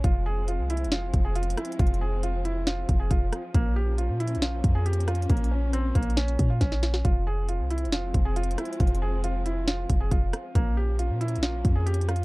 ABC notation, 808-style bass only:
X:1
M:4/4
L:1/16
Q:1/4=137
K:Fm
V:1 name="808-style bass" clef=bass
F,,,4- F,,, C,,2- C,,/2 F,,,2- F,,,/2 F,,,4 z2 | F,,,8- F,,,2 F,,,2 F,,,2 z2 | B,,,4- B,,, B,,2- B,,/2 B,,,2- B,,,/2 F,,6 | B,,,6 B,,,4 B,,2 B,,,4 |
F,,,4- F,,, C,,2- C,,/2 F,,,2- F,,,/2 F,,,4 z2 | F,,,8- F,,,2 F,,,2 F,,,2 z2 | B,,,4- B,,, B,,2- B,,/2 B,,,2- B,,,/2 F,,6 |]